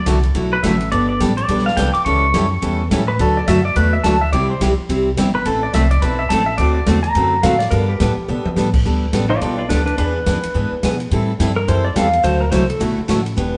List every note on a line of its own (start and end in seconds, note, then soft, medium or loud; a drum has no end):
0.06 0.34 C2 medium
0.06 0.17 D3 medium
0.06 0.18 F#3 medium
0.06 0.18 A3 medium
0.06 0.18 E4 medium
0.06 0.18 F#4 medium
0.06 kick soft
0.06 snare medium
0.06 hi-hat pedal medium
0.06 ride medium
0.23 ride soft
0.35 0.63 B1 medium
0.35 0.54 D3 medium
0.35 0.54 F#3 medium
0.35 0.55 A3 medium
0.35 0.55 E4 medium
0.35 0.55 F#4 medium
0.35 kick soft
0.35 ride medium
0.53 0.63 B4 loud
0.63 0.91 A1 medium
0.63 0.74 D3 medium
0.63 0.75 F#3 medium
0.63 0.75 A3 medium
0.63 0.75 E4 medium
0.63 0.75 F#4 medium
0.63 0.91 E5 medium
0.63 kick soft
0.63 snare medium
0.63 hi-hat pedal medium
0.63 ride medium
0.81 ride soft
0.92 1.19 G1 medium
0.92 1.11 G3 medium
0.92 1.11 B3 medium
0.92 1.11 D4 medium
0.92 1.12 A4 medium
0.92 1.08 D5 loud
0.92 kick soft
0.92 ride medium
1.09 1.20 D5 loud
1.20 1.48 A1 loud
1.20 1.31 G3 medium
1.20 1.31 B3 medium
1.20 1.31 D4 medium
1.20 1.31 A4 medium
1.20 kick soft
1.20 snare medium
1.20 hi-hat pedal medium
1.20 ride medium
1.37 1.65 D5 medium
1.37 ride soft
1.48 1.76 B1 medium
1.48 1.68 G3 medium
1.48 1.68 B3 medium
1.48 1.68 D4 medium
1.48 1.68 A4 medium
1.48 kick soft
1.48 ride medium
1.58 snare soft
1.66 1.77 F5 medium
1.66 snare soft
1.77 1.93 C2 medium
1.77 1.88 G3 medium
1.77 1.88 B3 medium
1.77 1.89 D4 medium
1.77 1.89 A4 medium
1.77 1.93 G5 loud
1.77 kick soft
1.77 snare medium
1.77 hi-hat pedal medium
1.77 ride medium
1.94 2.04 D6 medium
1.94 muted upright bass stroke soft
1.94 ride soft
2.05 2.33 C#2 medium
2.05 2.25 E3 medium
2.05 2.25 G3 medium
2.05 2.25 C#4 medium
2.05 2.25 E4 medium
2.05 2.25 A4 medium
2.05 2.87 C#6 loud
2.05 kick soft
2.05 ride medium
2.34 2.61 F#2 loud
2.34 2.45 E3 medium
2.34 2.45 G3 medium
2.34 2.45 C#4 medium
2.34 2.45 E4 medium
2.34 2.45 A4 medium
2.34 kick soft
2.34 snare medium
2.34 hi-hat pedal medium
2.34 ride medium
2.62 2.90 E2 medium
2.62 2.81 E3 medium
2.62 2.81 G3 medium
2.62 2.82 C#4 medium
2.62 2.81 E4 medium
2.62 2.82 A4 medium
2.62 kick soft
2.62 ride medium
2.91 3.18 A2 medium
2.91 3.02 E3 medium
2.91 3.02 G3 medium
2.91 3.02 C#4 medium
2.91 3.02 E4 medium
2.91 3.02 A4 medium
2.91 kick soft
2.91 snare medium
2.91 hi-hat pedal medium
2.91 ride medium
3.08 3.19 B4 loud
3.19 3.46 D2 medium
3.19 3.38 D3 medium
3.19 3.38 F#3 medium
3.19 3.39 A3 medium
3.19 3.39 D4 medium
3.19 3.39 F#4 medium
3.19 3.37 A4 medium
3.19 kick soft
3.19 ride medium
3.37 3.47 D5 medium
3.47 3.75 F#2 loud
3.47 3.58 D3 medium
3.47 3.58 F#3 medium
3.47 3.59 A3 medium
3.47 3.59 D4 medium
3.47 3.59 F#4 medium
3.47 3.64 E5 loud
3.47 kick soft
3.47 snare medium
3.47 hi-hat pedal medium
3.47 ride medium
3.65 3.75 D5 medium
3.76 4.03 E2 medium
3.76 3.95 D3 medium
3.76 3.95 F#3 medium
3.76 3.95 A3 medium
3.76 3.96 D4 medium
3.76 3.95 F#4 medium
3.76 3.92 B4 medium
3.76 kick soft
3.76 ride medium
3.93 4.04 E5 medium
4.04 4.31 D2 medium
4.04 4.15 D3 medium
4.04 4.15 F#3 medium
4.04 4.15 A3 medium
4.04 4.15 D4 medium
4.04 4.15 F#4 medium
4.04 4.20 A5 medium
4.04 kick soft
4.04 snare medium
4.04 hi-hat pedal medium
4.04 ride medium
4.21 4.32 E5 medium
4.32 4.60 C2 medium
4.32 4.52 C3 medium
4.32 4.52 G3 medium
4.32 4.52 C4 medium
4.32 4.52 E4 medium
4.32 4.52 G4 medium
4.32 4.49 D5 loud
4.32 kick soft
4.32 ride medium
4.50 4.60 C5 loud
4.61 4.77 B1 medium
4.61 4.72 C3 medium
4.61 4.72 G3 medium
4.61 4.72 C4 medium
4.61 4.72 E4 medium
4.61 4.72 G4 medium
4.61 kick soft
4.61 snare medium
4.61 hi-hat pedal medium
4.61 ride medium
4.77 muted upright bass stroke soft
4.89 5.16 C2 medium
4.89 5.08 C3 medium
4.89 5.08 G3 medium
4.89 5.08 C4 medium
4.89 5.09 E4 medium
4.89 5.09 G4 medium
4.89 kick soft
4.89 ride medium
5.17 5.45 G1 medium
5.17 5.28 C3 medium
5.17 5.28 G3 medium
5.17 5.28 C4 medium
5.17 5.28 E4 medium
5.17 5.29 G4 medium
5.17 kick soft
5.17 snare medium
5.17 hi-hat pedal medium
5.17 ride medium
5.35 5.45 B4 loud
5.45 5.73 A1 medium
5.45 5.65 E3 medium
5.45 5.65 A3 medium
5.45 5.65 C4 medium
5.45 5.65 E4 medium
5.45 5.62 A4 medium
5.45 5.65 A4 medium
5.45 kick soft
5.45 ride medium
5.63 5.74 D5 medium
5.73 6.01 C2 loud
5.73 5.84 E3 medium
5.73 5.85 A3 medium
5.73 5.85 C4 medium
5.73 5.85 E4 medium
5.73 5.85 A4 medium
5.73 5.90 E5 loud
5.73 kick soft
5.73 snare medium
5.73 hi-hat pedal medium
5.73 ride medium
5.91 6.02 D5 loud
5.91 ride medium
6.02 6.29 B1 medium
6.02 6.22 E3 medium
6.02 6.22 A3 medium
6.02 6.22 C4 medium
6.02 6.22 E4 medium
6.02 6.22 A4 medium
6.02 6.19 B4 medium
6.02 kick soft
6.02 ride medium
6.19 6.30 E5 loud
6.29 6.58 A1 medium
6.29 6.42 E3 medium
6.29 6.42 A3 medium
6.29 6.42 C4 medium
6.29 6.42 E4 medium
6.29 6.42 A4 medium
6.29 6.46 A5 medium
6.29 kick soft
6.29 snare medium
6.29 hi-hat pedal medium
6.29 ride medium
6.46 6.57 E5 medium
6.58 6.86 D2 medium
6.58 6.78 D3 medium
6.58 6.78 A3 medium
6.58 6.79 C4 medium
6.58 6.79 F#4 medium
6.58 6.79 A4 medium
6.58 6.73 D5 loud
6.58 kick soft
6.58 ride medium
6.75 6.86 D5 loud
6.86 7.14 E2 loud
6.86 6.98 D3 medium
6.86 6.98 A3 medium
6.86 6.98 C4 medium
6.86 6.98 F#4 medium
6.86 6.98 A4 medium
6.86 kick soft
6.86 snare medium
6.86 hi-hat pedal medium
6.86 ride medium
7.03 7.42 A#5 medium
7.03 ride soft
7.15 7.43 F#2 medium
7.15 7.35 D3 medium
7.15 7.35 A3 medium
7.15 7.35 C4 medium
7.15 7.35 F#4 medium
7.15 7.35 A4 medium
7.15 kick soft
7.15 ride medium
7.43 7.71 A2 medium
7.43 7.54 D3 medium
7.43 7.54 A3 medium
7.43 7.55 C4 medium
7.43 7.55 F#4 medium
7.43 7.55 A4 medium
7.43 7.60 F5 medium
7.43 kick soft
7.43 snare medium
7.43 hi-hat pedal medium
7.43 ride medium
7.59 7.71 D5 loud
7.59 snare soft
7.59 ride medium
7.71 7.99 G2 medium
7.71 7.91 G3 medium
7.71 7.91 B3 medium
7.71 7.91 D4 medium
7.71 7.91 A4 medium
7.71 7.88 A#4 loud
7.71 kick soft
7.71 ride medium
7.89 8.44 G4 loud
8.00 8.16 A2 loud
8.00 8.11 G3 medium
8.00 8.11 B3 medium
8.00 8.11 D4 medium
8.00 8.12 A4 medium
8.00 kick soft
8.00 snare medium
8.00 hi-hat pedal medium
8.00 ride medium
8.17 muted upright bass stroke soft
8.28 8.44 B2 medium
8.28 8.48 G3 medium
8.28 8.48 B3 medium
8.28 8.48 D4 medium
8.28 8.48 A4 medium
8.28 mid tom medium
8.45 muted upright bass stroke soft
8.45 high tom medium
8.56 8.84 A2 loud
8.56 8.67 G3 medium
8.56 8.68 B3 medium
8.56 8.68 D4 medium
8.56 8.68 A4 medium
8.56 snare medium
8.56 hi-hat pedal medium
8.74 kick medium
8.74 crash medium
8.85 9.12 D2 medium
8.85 9.04 G3 medium
8.85 9.05 B3 medium
8.85 9.05 D4 medium
8.85 9.05 A4 medium
8.85 kick soft
9.13 9.40 A1 loud
9.13 9.24 G3 medium
9.13 9.24 B3 medium
9.13 9.24 D4 medium
9.13 9.25 A4 medium
9.13 kick soft
9.13 snare medium
9.13 hi-hat pedal medium
9.13 ride medium
9.30 9.41 F4 medium
9.30 9.41 D5 medium
9.41 9.69 B1 medium
9.41 9.61 G3 medium
9.41 9.61 B3 medium
9.41 9.61 D4 medium
9.41 9.57 F4 medium
9.41 9.61 A4 medium
9.41 9.58 D5 medium
9.41 kick soft
9.41 ride medium
9.58 9.68 F4 medium
9.58 9.69 D5 medium
9.69 9.97 D2 medium
9.69 9.80 G3 medium
9.69 9.81 B3 medium
9.69 9.84 D4 medium
9.69 9.81 D4 medium
9.69 9.81 A4 medium
9.69 9.85 B4 medium
9.69 kick soft
9.69 snare medium
9.69 hi-hat pedal medium
9.69 ride medium
9.85 9.96 D4 medium
9.85 9.97 B4 medium
9.85 ride soft
9.98 10.25 E2 medium
9.98 10.17 E3 medium
9.98 10.17 B3 medium
9.98 10.14 D4 medium
9.98 10.18 D4 medium
9.98 10.18 G#4 medium
9.98 10.15 B4 medium
9.98 kick soft
9.98 ride medium
10.16 10.70 B4 medium
10.26 10.42 F#2 loud
10.26 10.37 E3 medium
10.26 10.37 B3 medium
10.26 10.38 D4 medium
10.26 10.38 G#4 medium
10.26 kick soft
10.26 snare medium
10.26 hi-hat pedal medium
10.26 ride medium
10.43 muted upright bass stroke soft
10.43 ride medium
10.54 10.70 G#2 medium
10.54 10.74 E3 medium
10.54 10.74 B3 medium
10.54 10.74 D4 medium
10.54 10.74 G#4 medium
10.54 kick soft
10.72 muted upright bass stroke soft
10.83 11.10 B2 medium
10.83 10.94 E3 medium
10.83 10.94 B3 medium
10.83 10.94 D4 medium
10.83 10.94 G#4 medium
10.83 kick soft
10.83 snare medium
10.83 hi-hat pedal medium
10.83 ride medium
11.00 ride soft
11.11 11.38 A2 medium
11.11 11.31 E3 medium
11.11 11.31 G3 medium
11.11 11.31 C4 medium
11.11 11.31 E4 medium
11.11 11.31 A4 medium
11.11 kick soft
11.11 ride medium
11.40 11.67 G2 medium
11.40 11.50 E3 medium
11.40 11.50 G3 medium
11.40 11.51 C4 medium
11.40 11.51 E4 medium
11.40 11.51 A4 medium
11.40 kick soft
11.40 snare medium
11.40 hi-hat pedal medium
11.40 ride medium
11.56 11.67 A#4 medium
11.68 11.95 F#2 medium
11.68 11.87 E3 medium
11.68 11.87 G3 medium
11.68 11.87 C4 medium
11.68 11.87 E4 medium
11.68 11.87 A4 medium
11.68 11.85 C5 medium
11.68 kick soft
11.68 ride medium
11.85 11.95 D5 medium
11.96 12.23 E2 medium
11.96 12.07 E3 medium
11.96 12.07 G3 medium
11.96 12.07 C4 medium
11.96 12.07 E4 medium
11.96 12.07 A4 medium
11.96 12.23 F5 loud
11.96 kick soft
11.96 snare medium
11.96 hi-hat pedal medium
11.96 ride medium
12.13 ride soft
12.23 12.52 D2 medium
12.23 12.43 D3 medium
12.23 12.43 F#3 medium
12.23 12.43 A3 medium
12.23 12.43 E4 medium
12.23 12.43 F#4 medium
12.23 12.40 C5 medium
12.23 kick soft
12.23 ride medium
12.41 12.51 A#4 medium
12.52 12.80 C2 medium
12.52 12.63 D3 medium
12.52 12.63 F#3 medium
12.52 12.63 A3 medium
12.52 12.63 E4 medium
12.52 12.63 F#4 medium
12.52 12.68 C5 medium
12.52 kick soft
12.52 snare medium
12.52 hi-hat pedal medium
12.52 ride medium
12.70 12.80 A4 medium
12.70 ride medium
12.80 12.96 B1 medium
12.80 13.00 D3 medium
12.80 13.00 F#3 medium
12.80 13.00 A3 medium
12.80 13.00 E4 medium
12.80 13.00 F#4 medium
12.80 kick soft
12.80 ride medium
12.97 muted upright bass stroke soft
13.08 13.36 A1 medium
13.08 13.19 D3 medium
13.08 13.19 F#3 medium
13.08 13.19 A3 medium
13.08 13.20 E4 medium
13.08 13.20 F#4 medium
13.08 kick soft
13.08 snare medium
13.08 hi-hat pedal medium
13.08 ride medium
13.26 ride medium
13.36 13.57 E1 medium
13.36 13.56 E3 medium
13.36 13.56 B3 medium
13.36 13.57 D4 medium
13.36 13.57 G4 medium
13.36 kick soft
13.36 ride medium